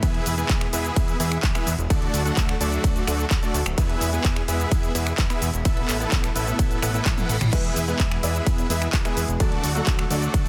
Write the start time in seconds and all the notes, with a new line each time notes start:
Already playing: B2 E3 E4
0.02 E2 G#3 B3 E4 G#4 B4 E5, kick, closed hi-hat, ride, shaker
0.14 closed hi-hat
0.26 E2, open hi-hat, shaker
0.38 B3 E4 G#4 B4 G#5, closed hi-hat, shaker
0.49 E2, kick, clap, closed hi-hat, ride, shaker
0.61 finger snap, closed hi-hat
0.73 E2 B3 E4 G#4 B4 E5, open hi-hat, shaker
0.85 closed hi-hat, shaker
0.96 E2, kick, closed hi-hat, ride, shaker
1.08 closed hi-hat, shaker
1.20 E2 B3 E4 G#4 B4 E5, open hi-hat, shaker
1.32 finger snap, closed hi-hat, shaker
1.43 E2, kick, clap, closed hi-hat, ride, shaker
1.55 B3 E4 G#4 B4 E5, finger snap, closed hi-hat, shaker
1.67 E2, open hi-hat, shaker
1.79 E1, closed hi-hat, shaker
1.90 D2 D3 F#3 A3 D4 F#4 A4 D5, kick, closed hi-hat, ride, shaker
2.02 closed hi-hat
2.14 D2, open hi-hat, shaker
2.25 A3 D4 F#4 A4 F#5, closed hi-hat, shaker
2.37 D2, kick, clap, closed hi-hat, ride, shaker
2.49 finger snap, closed hi-hat
2.60 D2 A3 D4 F#4 A4 D5, open hi-hat, shaker
2.72 closed hi-hat, shaker
2.84 D2, kick, closed hi-hat, ride, shaker
2.96 closed hi-hat, shaker
3.07 D2 A3 D4 F#4 A4 D5, finger snap, open hi-hat, shaker
3.19 closed hi-hat, shaker
3.31 D2, kick, clap, closed hi-hat, ride, shaker
3.43 A3 D4 F#4 A4 D5, closed hi-hat, shaker
3.54 D2, open hi-hat, shaker
3.66 D1, finger snap, closed hi-hat, shaker
3.78 E2 B2 E3 G#3 B3 E4 G#4 B4 E5, kick, closed hi-hat, ride, shaker
3.89 closed hi-hat
4.01 E2, open hi-hat, shaker
4.13 B3 E4 G#4 B4 G#5, closed hi-hat, shaker
4.24 E2, kick, clap, closed hi-hat, ride, shaker
4.36 finger snap, closed hi-hat
4.48 E2 B3 E4 G#4 B4 E5, open hi-hat, shaker
4.60 closed hi-hat, shaker
4.71 E2, kick, closed hi-hat, ride, shaker
4.83 closed hi-hat, shaker
4.95 E2 B3 E4 G#4 B4 E5, open hi-hat, shaker
5.07 finger snap, shaker
5.18 E2, kick, clap, closed hi-hat, ride, shaker
5.30 B3 E4 G#4 B4 E5, finger snap, closed hi-hat, shaker
5.42 E2, open hi-hat, shaker
5.54 E1, closed hi-hat, shaker
5.65 A1 A3 B3 E4 A4 B4 E5, kick, closed hi-hat, ride, shaker
5.77 closed hi-hat
5.88 A1, clap, open hi-hat, shaker
6.00 B3 E4 A4 B4 A5, closed hi-hat, shaker
6.12 A1, kick, clap, closed hi-hat, ride, shaker
6.24 finger snap, closed hi-hat, shaker
6.36 A1 B3 E4 A4 B4 E5, open hi-hat, shaker
6.47 closed hi-hat, shaker
6.59 A1, kick, closed hi-hat, ride, reverse cymbal, shaker
6.71 closed hi-hat, shaker
6.82 A1 B3 E4 A4 B4 F#5, finger snap, open hi-hat, shaker
6.94 B3 E4 A4 B4 E5, closed hi-hat, shaker
7.06 A1, kick, clap, closed hi-hat, high tom, ride, shaker
7.18 B3 E4 A4 B4 F#5, closed hi-hat, high tom, shaker
7.29 A1, open hi-hat, shaker
7.41 A1, finger snap, mid tom, shaker
7.52 E2 G#3 B3 E4 G#4 B4 E5, kick, closed hi-hat, ride, crash, shaker
7.64 closed hi-hat
7.76 E2, open hi-hat, shaker
7.88 G#3 B3 E4 G#4 B4 G#5, closed hi-hat, shaker
7.99 E2, kick, clap, closed hi-hat, ride, shaker
8.11 finger snap, closed hi-hat
8.23 E2 G#3 B3 E4 G#4 B4 D5 E5, open hi-hat, shaker
8.35 closed hi-hat, shaker
8.46 E2, kick, closed hi-hat, ride, shaker
8.58 closed hi-hat, shaker
8.69 E2 G#3 B3 E4 G#4 B4 E5, open hi-hat, shaker
8.82 finger snap, closed hi-hat, shaker
8.93 E2, kick, clap, closed hi-hat, ride, shaker
9.05 G#3 B3 E4 G#4 B4 E5, finger snap, closed hi-hat, shaker
9.17 E2, open hi-hat, shaker
9.28 E1, closed hi-hat, shaker
9.40 D2 D3 F#3 A3 D4 F#4 A4 D5, kick, closed hi-hat, ride, shaker
9.52 closed hi-hat
9.64 D2, open hi-hat, shaker
9.75 F#3 A3 D4 F#4 A4 F#5, closed hi-hat, shaker
9.87 D2, kick, clap, closed hi-hat, ride, shaker
9.99 finger snap, closed hi-hat
10.10 D2 F#3 A3 D4 F#4 A4 D5, open hi-hat, shaker
10.22 closed hi-hat, shaker
10.34 D2, kick, closed hi-hat, ride, shaker